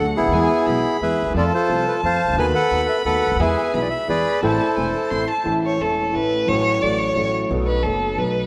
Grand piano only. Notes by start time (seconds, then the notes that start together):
0.00 D2 D3 F#3 A3 D4 A4
0.21 C#2
0.26 D2 D#2
0.33 E2 E3 G#3 B3 G#4
0.68 B1 B2 E3 G#3 B3 G#4
1.01 E2 E3 G#3 B3 G#4
1.22 D2 D#2
1.30 E2 F3 A3
1.34 F2 C4 A4
1.68 C2 C3 F3 A3 C4 A4
2.03 F2 F3 A3 C4 A4
2.25 C2 C#2
2.33 D2
2.38 D#2 D#3 A3 B3 F#4
2.71 D#2 D#3 A3 B3 F#4
3.06 D#2 D#3 A3 B3 F#4
3.26 C#2
3.31 D2 D#2
3.39 E2 E3 G#3 B3 G#4
3.74 B1 B2 E3 G#3 B3 G#4
4.08 E2 E3 G#3 B3 G#4
4.43 A1 A2 E3 A3 C4 A4
4.77 E1 E2 E3 A3 C4 A4
5.11 A1 A2 E3 A3 C4 A4
5.44 A1 A2 E3 A3 C#4 A4
5.77 E1 E2 E3 A3 C#4
5.82 A4
6.11 A1 A2 E3 A3 C#4 A4
6.46 A1 A2 F#3 A3 C#4 A4
6.80 A1 A2 F#3 A3 C#4
6.84 A4
7.14 A1 A2 F#3 A3 C#4
7.18 A4
7.49 B1 B2 F#3 B3 D#4 A4
7.83 F#1 F#2 F#3 B3 D#4 A4
8.17 B1 B2 F#3 B3 D#4 A4